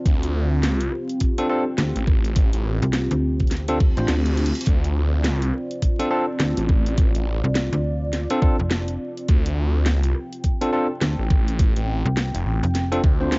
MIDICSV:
0, 0, Header, 1, 7, 480
1, 0, Start_track
1, 0, Key_signature, -1, "minor"
1, 0, Tempo, 576923
1, 45, Time_signature, 4, 2, 24, 8
1, 11137, End_track
2, 0, Start_track
2, 0, Title_t, "Analog synth pad"
2, 0, Program_c, 0, 89
2, 0, Note_on_c, 0, 60, 78
2, 0, Note_on_c, 0, 65, 70
2, 49, Note_on_c, 0, 67, 88
2, 3878, Note_on_c, 0, 74, 87
2, 3883, Note_off_c, 0, 67, 0
2, 7717, Note_off_c, 0, 74, 0
2, 7721, Note_on_c, 0, 79, 88
2, 11137, Note_off_c, 0, 60, 0
2, 11137, Note_off_c, 0, 65, 0
2, 11137, Note_off_c, 0, 79, 0
2, 11137, End_track
3, 0, Start_track
3, 0, Title_t, "Tine electric piano"
3, 0, Program_c, 1, 4
3, 1151, Note_on_c, 1, 62, 89
3, 1151, Note_on_c, 1, 69, 108
3, 1152, Note_on_c, 1, 60, 97
3, 1152, Note_on_c, 1, 65, 88
3, 1222, Note_off_c, 1, 62, 0
3, 1223, Note_off_c, 1, 60, 0
3, 1223, Note_off_c, 1, 65, 0
3, 1223, Note_off_c, 1, 69, 0
3, 1242, Note_on_c, 1, 62, 81
3, 1242, Note_on_c, 1, 65, 79
3, 1243, Note_on_c, 1, 69, 95
3, 1244, Note_on_c, 1, 60, 88
3, 1359, Note_off_c, 1, 62, 0
3, 1359, Note_off_c, 1, 65, 0
3, 1359, Note_off_c, 1, 69, 0
3, 1360, Note_off_c, 1, 60, 0
3, 3065, Note_on_c, 1, 60, 96
3, 3066, Note_on_c, 1, 62, 84
3, 3066, Note_on_c, 1, 65, 88
3, 3067, Note_on_c, 1, 69, 107
3, 3140, Note_off_c, 1, 60, 0
3, 3140, Note_off_c, 1, 62, 0
3, 3140, Note_off_c, 1, 65, 0
3, 3141, Note_off_c, 1, 69, 0
3, 3304, Note_on_c, 1, 72, 87
3, 3305, Note_on_c, 1, 60, 81
3, 3305, Note_on_c, 1, 62, 69
3, 3305, Note_on_c, 1, 65, 71
3, 3441, Note_off_c, 1, 62, 0
3, 3441, Note_off_c, 1, 65, 0
3, 3441, Note_off_c, 1, 72, 0
3, 3442, Note_off_c, 1, 60, 0
3, 4987, Note_on_c, 1, 60, 97
3, 4987, Note_on_c, 1, 69, 108
3, 4988, Note_on_c, 1, 62, 90
3, 4988, Note_on_c, 1, 65, 87
3, 5061, Note_off_c, 1, 60, 0
3, 5061, Note_off_c, 1, 62, 0
3, 5061, Note_off_c, 1, 65, 0
3, 5061, Note_off_c, 1, 69, 0
3, 5080, Note_on_c, 1, 60, 90
3, 5080, Note_on_c, 1, 62, 79
3, 5081, Note_on_c, 1, 69, 96
3, 5082, Note_on_c, 1, 65, 77
3, 5198, Note_off_c, 1, 60, 0
3, 5198, Note_off_c, 1, 62, 0
3, 5198, Note_off_c, 1, 69, 0
3, 5199, Note_off_c, 1, 65, 0
3, 6909, Note_on_c, 1, 65, 92
3, 6910, Note_on_c, 1, 60, 95
3, 6910, Note_on_c, 1, 62, 91
3, 6910, Note_on_c, 1, 69, 108
3, 6981, Note_off_c, 1, 65, 0
3, 6982, Note_off_c, 1, 60, 0
3, 6982, Note_off_c, 1, 62, 0
3, 6982, Note_off_c, 1, 69, 0
3, 7003, Note_on_c, 1, 60, 88
3, 7003, Note_on_c, 1, 62, 82
3, 7003, Note_on_c, 1, 65, 82
3, 7004, Note_on_c, 1, 69, 96
3, 7119, Note_off_c, 1, 60, 0
3, 7119, Note_off_c, 1, 62, 0
3, 7119, Note_off_c, 1, 65, 0
3, 7120, Note_off_c, 1, 69, 0
3, 8831, Note_on_c, 1, 60, 95
3, 8831, Note_on_c, 1, 62, 87
3, 8832, Note_on_c, 1, 65, 88
3, 8832, Note_on_c, 1, 69, 108
3, 8902, Note_off_c, 1, 60, 0
3, 8903, Note_off_c, 1, 62, 0
3, 8903, Note_off_c, 1, 65, 0
3, 8903, Note_off_c, 1, 69, 0
3, 8924, Note_on_c, 1, 62, 78
3, 8925, Note_on_c, 1, 69, 93
3, 8926, Note_on_c, 1, 60, 86
3, 8926, Note_on_c, 1, 65, 81
3, 9040, Note_off_c, 1, 60, 0
3, 9040, Note_off_c, 1, 62, 0
3, 9040, Note_off_c, 1, 69, 0
3, 9041, Note_off_c, 1, 65, 0
3, 10749, Note_on_c, 1, 60, 96
3, 10749, Note_on_c, 1, 69, 104
3, 10750, Note_on_c, 1, 62, 88
3, 10751, Note_on_c, 1, 65, 89
3, 10821, Note_off_c, 1, 69, 0
3, 10822, Note_off_c, 1, 60, 0
3, 10822, Note_off_c, 1, 62, 0
3, 10823, Note_off_c, 1, 65, 0
3, 10988, Note_on_c, 1, 60, 76
3, 10988, Note_on_c, 1, 65, 73
3, 10988, Note_on_c, 1, 72, 86
3, 10990, Note_on_c, 1, 62, 71
3, 11123, Note_off_c, 1, 60, 0
3, 11123, Note_off_c, 1, 65, 0
3, 11123, Note_off_c, 1, 72, 0
3, 11124, Note_off_c, 1, 62, 0
3, 11137, End_track
4, 0, Start_track
4, 0, Title_t, "FM bass"
4, 0, Program_c, 2, 39
4, 1484, Note_on_c, 2, 38, 99
4, 1606, Note_off_c, 2, 38, 0
4, 2349, Note_on_c, 2, 36, 101
4, 2566, Note_off_c, 2, 36, 0
4, 2587, Note_on_c, 2, 38, 97
4, 3285, Note_off_c, 2, 38, 0
4, 3308, Note_on_c, 2, 33, 98
4, 3389, Note_off_c, 2, 33, 0
4, 5323, Note_on_c, 2, 38, 98
4, 5446, Note_off_c, 2, 38, 0
4, 6189, Note_on_c, 2, 36, 100
4, 6406, Note_off_c, 2, 36, 0
4, 6427, Note_on_c, 2, 38, 98
4, 6885, Note_off_c, 2, 38, 0
4, 7149, Note_on_c, 2, 29, 96
4, 7469, Note_off_c, 2, 29, 0
4, 9164, Note_on_c, 2, 38, 96
4, 9287, Note_off_c, 2, 38, 0
4, 10030, Note_on_c, 2, 36, 104
4, 10247, Note_off_c, 2, 36, 0
4, 10508, Note_on_c, 2, 29, 103
4, 10829, Note_off_c, 2, 29, 0
4, 11137, End_track
5, 0, Start_track
5, 0, Title_t, "Detuned saw bass"
5, 0, Program_c, 3, 39
5, 47, Note_on_c, 3, 38, 99
5, 546, Note_off_c, 3, 38, 0
5, 546, Note_on_c, 3, 37, 99
5, 751, Note_off_c, 3, 37, 0
5, 1626, Note_on_c, 3, 33, 99
5, 2085, Note_off_c, 3, 33, 0
5, 2109, Note_on_c, 3, 33, 97
5, 2326, Note_off_c, 3, 33, 0
5, 3400, Note_on_c, 3, 38, 97
5, 3764, Note_off_c, 3, 38, 0
5, 3884, Note_on_c, 3, 38, 97
5, 4383, Note_off_c, 3, 38, 0
5, 4383, Note_on_c, 3, 37, 97
5, 4589, Note_off_c, 3, 37, 0
5, 5467, Note_on_c, 3, 33, 97
5, 5925, Note_off_c, 3, 33, 0
5, 5946, Note_on_c, 3, 33, 99
5, 6165, Note_off_c, 3, 33, 0
5, 7726, Note_on_c, 3, 38, 94
5, 8225, Note_off_c, 3, 38, 0
5, 8225, Note_on_c, 3, 37, 94
5, 8430, Note_off_c, 3, 37, 0
5, 9306, Note_on_c, 3, 33, 97
5, 9765, Note_off_c, 3, 33, 0
5, 9787, Note_on_c, 3, 33, 99
5, 10005, Note_off_c, 3, 33, 0
5, 10268, Note_on_c, 3, 29, 97
5, 10349, Note_off_c, 3, 29, 0
5, 10363, Note_on_c, 3, 33, 100
5, 10486, Note_off_c, 3, 33, 0
5, 10847, Note_on_c, 3, 38, 100
5, 11137, Note_off_c, 3, 38, 0
5, 11137, End_track
6, 0, Start_track
6, 0, Title_t, "Reverse cymbal"
6, 0, Program_c, 4, 119
6, 2922, Note_on_c, 4, 60, 62
6, 3883, Note_off_c, 4, 60, 0
6, 11137, End_track
7, 0, Start_track
7, 0, Title_t, "Drums"
7, 47, Note_on_c, 9, 36, 112
7, 48, Note_on_c, 9, 42, 74
7, 130, Note_off_c, 9, 36, 0
7, 131, Note_off_c, 9, 42, 0
7, 193, Note_on_c, 9, 42, 54
7, 276, Note_off_c, 9, 42, 0
7, 527, Note_on_c, 9, 38, 112
7, 527, Note_on_c, 9, 42, 77
7, 610, Note_off_c, 9, 38, 0
7, 610, Note_off_c, 9, 42, 0
7, 671, Note_on_c, 9, 42, 52
7, 754, Note_off_c, 9, 42, 0
7, 765, Note_on_c, 9, 37, 42
7, 848, Note_off_c, 9, 37, 0
7, 910, Note_on_c, 9, 42, 36
7, 994, Note_off_c, 9, 42, 0
7, 1001, Note_on_c, 9, 42, 74
7, 1007, Note_on_c, 9, 36, 61
7, 1084, Note_off_c, 9, 42, 0
7, 1090, Note_off_c, 9, 36, 0
7, 1148, Note_on_c, 9, 42, 53
7, 1232, Note_off_c, 9, 42, 0
7, 1481, Note_on_c, 9, 38, 115
7, 1481, Note_on_c, 9, 42, 78
7, 1564, Note_off_c, 9, 38, 0
7, 1564, Note_off_c, 9, 42, 0
7, 1630, Note_on_c, 9, 42, 52
7, 1713, Note_off_c, 9, 42, 0
7, 1725, Note_on_c, 9, 37, 38
7, 1726, Note_on_c, 9, 36, 106
7, 1808, Note_off_c, 9, 37, 0
7, 1809, Note_off_c, 9, 36, 0
7, 1869, Note_on_c, 9, 42, 36
7, 1952, Note_off_c, 9, 42, 0
7, 1962, Note_on_c, 9, 42, 78
7, 1966, Note_on_c, 9, 36, 111
7, 2045, Note_off_c, 9, 42, 0
7, 2049, Note_off_c, 9, 36, 0
7, 2107, Note_on_c, 9, 42, 58
7, 2190, Note_off_c, 9, 42, 0
7, 2203, Note_on_c, 9, 37, 38
7, 2238, Note_off_c, 9, 37, 0
7, 2238, Note_on_c, 9, 37, 31
7, 2276, Note_off_c, 9, 37, 0
7, 2276, Note_on_c, 9, 37, 26
7, 2310, Note_off_c, 9, 37, 0
7, 2310, Note_on_c, 9, 37, 21
7, 2348, Note_off_c, 9, 37, 0
7, 2348, Note_on_c, 9, 37, 17
7, 2348, Note_on_c, 9, 42, 37
7, 2371, Note_off_c, 9, 37, 0
7, 2371, Note_on_c, 9, 37, 14
7, 2397, Note_off_c, 9, 37, 0
7, 2397, Note_on_c, 9, 37, 11
7, 2419, Note_off_c, 9, 37, 0
7, 2419, Note_on_c, 9, 37, 9
7, 2431, Note_off_c, 9, 42, 0
7, 2439, Note_on_c, 9, 38, 116
7, 2439, Note_on_c, 9, 42, 83
7, 2502, Note_off_c, 9, 37, 0
7, 2522, Note_off_c, 9, 38, 0
7, 2522, Note_off_c, 9, 42, 0
7, 2586, Note_on_c, 9, 42, 54
7, 2669, Note_off_c, 9, 42, 0
7, 2826, Note_on_c, 9, 42, 17
7, 2830, Note_on_c, 9, 36, 60
7, 2889, Note_off_c, 9, 42, 0
7, 2889, Note_on_c, 9, 42, 24
7, 2913, Note_off_c, 9, 36, 0
7, 2920, Note_off_c, 9, 42, 0
7, 2920, Note_on_c, 9, 38, 59
7, 2920, Note_on_c, 9, 42, 82
7, 2967, Note_off_c, 9, 42, 0
7, 2967, Note_on_c, 9, 42, 29
7, 3003, Note_off_c, 9, 38, 0
7, 3051, Note_off_c, 9, 42, 0
7, 3063, Note_on_c, 9, 42, 54
7, 3146, Note_off_c, 9, 42, 0
7, 3165, Note_on_c, 9, 36, 106
7, 3248, Note_off_c, 9, 36, 0
7, 3304, Note_on_c, 9, 42, 37
7, 3387, Note_off_c, 9, 42, 0
7, 3397, Note_on_c, 9, 38, 116
7, 3397, Note_on_c, 9, 42, 82
7, 3480, Note_off_c, 9, 38, 0
7, 3480, Note_off_c, 9, 42, 0
7, 3543, Note_on_c, 9, 42, 54
7, 3626, Note_off_c, 9, 42, 0
7, 3640, Note_on_c, 9, 42, 54
7, 3711, Note_off_c, 9, 42, 0
7, 3711, Note_on_c, 9, 42, 63
7, 3787, Note_off_c, 9, 42, 0
7, 3787, Note_on_c, 9, 42, 72
7, 3834, Note_off_c, 9, 42, 0
7, 3834, Note_on_c, 9, 42, 84
7, 3880, Note_off_c, 9, 42, 0
7, 3880, Note_on_c, 9, 42, 86
7, 3885, Note_on_c, 9, 36, 119
7, 3964, Note_off_c, 9, 42, 0
7, 3968, Note_off_c, 9, 36, 0
7, 4029, Note_on_c, 9, 42, 56
7, 4112, Note_off_c, 9, 42, 0
7, 4362, Note_on_c, 9, 38, 119
7, 4362, Note_on_c, 9, 42, 82
7, 4446, Note_off_c, 9, 38, 0
7, 4446, Note_off_c, 9, 42, 0
7, 4510, Note_on_c, 9, 42, 55
7, 4593, Note_off_c, 9, 42, 0
7, 4604, Note_on_c, 9, 37, 43
7, 4688, Note_off_c, 9, 37, 0
7, 4750, Note_on_c, 9, 42, 39
7, 4833, Note_off_c, 9, 42, 0
7, 4844, Note_on_c, 9, 42, 83
7, 4845, Note_on_c, 9, 36, 61
7, 4927, Note_off_c, 9, 42, 0
7, 4928, Note_off_c, 9, 36, 0
7, 4989, Note_on_c, 9, 42, 56
7, 5072, Note_off_c, 9, 42, 0
7, 5323, Note_on_c, 9, 38, 123
7, 5323, Note_on_c, 9, 42, 84
7, 5406, Note_off_c, 9, 38, 0
7, 5406, Note_off_c, 9, 42, 0
7, 5468, Note_on_c, 9, 42, 57
7, 5551, Note_off_c, 9, 42, 0
7, 5563, Note_on_c, 9, 37, 40
7, 5565, Note_on_c, 9, 36, 108
7, 5646, Note_off_c, 9, 37, 0
7, 5648, Note_off_c, 9, 36, 0
7, 5709, Note_on_c, 9, 42, 40
7, 5792, Note_off_c, 9, 42, 0
7, 5804, Note_on_c, 9, 42, 81
7, 5805, Note_on_c, 9, 36, 117
7, 5887, Note_off_c, 9, 42, 0
7, 5888, Note_off_c, 9, 36, 0
7, 5947, Note_on_c, 9, 42, 58
7, 6030, Note_off_c, 9, 42, 0
7, 6284, Note_on_c, 9, 38, 125
7, 6284, Note_on_c, 9, 42, 84
7, 6367, Note_off_c, 9, 38, 0
7, 6367, Note_off_c, 9, 42, 0
7, 6429, Note_on_c, 9, 42, 55
7, 6512, Note_off_c, 9, 42, 0
7, 6763, Note_on_c, 9, 38, 64
7, 6763, Note_on_c, 9, 42, 81
7, 6846, Note_off_c, 9, 38, 0
7, 6846, Note_off_c, 9, 42, 0
7, 6906, Note_on_c, 9, 42, 57
7, 6989, Note_off_c, 9, 42, 0
7, 7006, Note_on_c, 9, 36, 114
7, 7089, Note_off_c, 9, 36, 0
7, 7243, Note_on_c, 9, 38, 127
7, 7243, Note_on_c, 9, 42, 83
7, 7327, Note_off_c, 9, 38, 0
7, 7327, Note_off_c, 9, 42, 0
7, 7387, Note_on_c, 9, 42, 58
7, 7470, Note_off_c, 9, 42, 0
7, 7631, Note_on_c, 9, 42, 38
7, 7715, Note_off_c, 9, 42, 0
7, 7723, Note_on_c, 9, 42, 81
7, 7726, Note_on_c, 9, 36, 124
7, 7806, Note_off_c, 9, 42, 0
7, 7809, Note_off_c, 9, 36, 0
7, 7869, Note_on_c, 9, 42, 55
7, 7952, Note_off_c, 9, 42, 0
7, 8202, Note_on_c, 9, 38, 124
7, 8202, Note_on_c, 9, 42, 83
7, 8285, Note_off_c, 9, 38, 0
7, 8285, Note_off_c, 9, 42, 0
7, 8348, Note_on_c, 9, 42, 57
7, 8431, Note_off_c, 9, 42, 0
7, 8444, Note_on_c, 9, 37, 41
7, 8528, Note_off_c, 9, 37, 0
7, 8590, Note_on_c, 9, 42, 39
7, 8674, Note_off_c, 9, 42, 0
7, 8684, Note_on_c, 9, 42, 78
7, 8686, Note_on_c, 9, 36, 66
7, 8767, Note_off_c, 9, 42, 0
7, 8769, Note_off_c, 9, 36, 0
7, 8831, Note_on_c, 9, 42, 55
7, 8914, Note_off_c, 9, 42, 0
7, 9165, Note_on_c, 9, 38, 124
7, 9165, Note_on_c, 9, 42, 84
7, 9248, Note_off_c, 9, 38, 0
7, 9248, Note_off_c, 9, 42, 0
7, 9406, Note_on_c, 9, 36, 115
7, 9407, Note_on_c, 9, 37, 39
7, 9489, Note_off_c, 9, 36, 0
7, 9490, Note_off_c, 9, 37, 0
7, 9552, Note_on_c, 9, 42, 39
7, 9635, Note_off_c, 9, 42, 0
7, 9646, Note_on_c, 9, 36, 115
7, 9646, Note_on_c, 9, 42, 78
7, 9729, Note_off_c, 9, 42, 0
7, 9730, Note_off_c, 9, 36, 0
7, 9789, Note_on_c, 9, 42, 54
7, 9872, Note_off_c, 9, 42, 0
7, 10125, Note_on_c, 9, 38, 123
7, 10125, Note_on_c, 9, 42, 79
7, 10208, Note_off_c, 9, 38, 0
7, 10208, Note_off_c, 9, 42, 0
7, 10272, Note_on_c, 9, 42, 53
7, 10355, Note_off_c, 9, 42, 0
7, 10513, Note_on_c, 9, 42, 37
7, 10596, Note_off_c, 9, 42, 0
7, 10607, Note_on_c, 9, 38, 62
7, 10607, Note_on_c, 9, 42, 77
7, 10691, Note_off_c, 9, 38, 0
7, 10691, Note_off_c, 9, 42, 0
7, 10753, Note_on_c, 9, 42, 54
7, 10836, Note_off_c, 9, 42, 0
7, 10847, Note_on_c, 9, 36, 113
7, 10930, Note_off_c, 9, 36, 0
7, 11083, Note_on_c, 9, 38, 127
7, 11083, Note_on_c, 9, 42, 78
7, 11137, Note_off_c, 9, 38, 0
7, 11137, Note_off_c, 9, 42, 0
7, 11137, End_track
0, 0, End_of_file